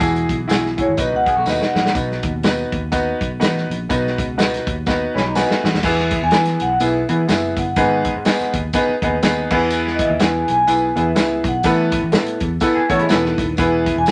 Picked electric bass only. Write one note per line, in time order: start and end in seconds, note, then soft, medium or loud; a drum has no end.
0.01 0.24 E1 loud
0.29 0.46 B1 medium
0.50 0.81 B1 medium
0.88 0.96 G#1 medium
0.98 1.10 B1 loud
1.12 1.24 C#2 medium
1.37 1.45 B1 medium
1.46 1.58 D#2 medium
1.76 1.92 A#1 medium
1.95 2.18 B1 loud
2.24 2.63 D#2 loud
2.72 3.11 D#2 medium
3.21 3.37 B1 medium
3.41 3.64 A1 medium
3.70 3.86 A#1 medium
3.90 4.13 B1 loud
4.19 4.57 C#2 loud
4.67 5.06 D#2 medium
5.15 5.43 B1 loud
5.64 5.72 A1 medium
5.74 5.82 D#2 medium
5.84 6.14 E2 loud
6.23 6.30 E2 loud
6.32 6.55 E3 loud
6.61 6.77 B1 medium
6.81 7.03 B1 medium
7.09 7.25 E3 loud
7.29 7.52 F#1 loud
7.57 7.73 G1 loud
7.76 8.08 G#1 loud
8.16 8.24 G#2 medium
8.41 muted picked electric bass stroke medium
8.54 8.70 D#2 medium
8.89 muted picked electric bass stroke soft
9.02 9.18 D#2 medium
9.23 9.46 D#2 loud
9.51 9.98 E2 loud
10.10 10.18 D#2 loud
10.20 10.42 E2 loud
10.48 10.64 B1 medium
10.68 10.90 B1 loud
10.96 11.12 E2 loud
11.45 11.60 B1 medium
11.64 11.95 A1 loud
12.03 12.11 A1 loud
12.13 12.36 A2 loud
12.41 12.57 E2 medium
12.77 muted picked electric bass stroke soft
12.90 13.06 A1 medium
13.11 13.33 E1 medium
13.38 13.54 D#1 loud
13.59 13.89 E1 loud
13.96 14.04 E1 medium
14.06 14.11 E2 loud